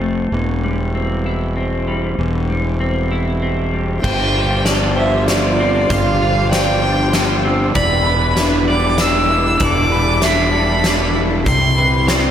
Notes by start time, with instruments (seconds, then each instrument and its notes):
Already playing: fingered electric bass F1, clean electric guitar C4 F4
0.02 clean electric guitar A3
0.32 fingered electric bass E1, clean electric guitar E3
0.64 clean electric guitar G3
0.95 clean electric guitar C4
1.26 clean electric guitar E4
1.57 clean electric guitar C4
1.88 clean electric guitar G3
2.18 fingered electric bass E1, clean electric guitar E3
2.50 clean electric guitar G3
2.80 clean electric guitar C4
3.11 clean electric guitar E4
3.42 clean electric guitar C4
3.73 clean electric guitar G3
4.02 fingered electric bass G1, clean electric guitar G2 C5, string section G3 D4 F4 C5, violin G5, kick, crash
4.35 clean electric guitar F4
4.65 clean electric guitar F3 D5, snare, closed hi-hat
4.96 clean electric guitar D3 C5, violin E5
5.27 clean electric guitar F3, violin D5, snare, closed hi-hat
5.60 clean electric guitar C4
5.89 fingered electric bass G1, clean electric guitar G2 C5, violin F5, kick, closed hi-hat
6.21 clean electric guitar F4
6.51 clean electric guitar F3 D5, violin G5, snare, closed hi-hat
6.82 clean electric guitar D3 C5
7.13 clean electric guitar F3, snare, closed hi-hat
7.45 clean electric guitar C4
7.75 fingered electric bass E1, clean electric guitar E3 D5, string section G3 E4 B4, violin B5, kick, closed hi-hat
8.06 clean electric guitar B4
8.37 clean electric guitar D4 E5, snare, closed hi-hat
8.68 clean electric guitar G3 D5, violin D6
8.98 clean electric guitar D4, violin E6, snare, closed hi-hat
9.30 clean electric guitar E4
9.60 fingered electric bass E1, clean electric guitar E3 D5, string section A4, kick, closed hi-hat
9.64 violin D6
9.92 clean electric guitar B4
10.22 clean electric guitar D4 E5, violin B5, snare, closed hi-hat
10.52 clean electric guitar G3 D5
10.84 clean electric guitar D4, snare, closed hi-hat
11.15 clean electric guitar E4
11.46 fingered electric bass C2, clean electric guitar C3, string section C4 E4 G4, violin C6, kick, closed hi-hat
11.78 clean electric guitar B4
12.07 clean electric guitar C4 D5, snare, closed hi-hat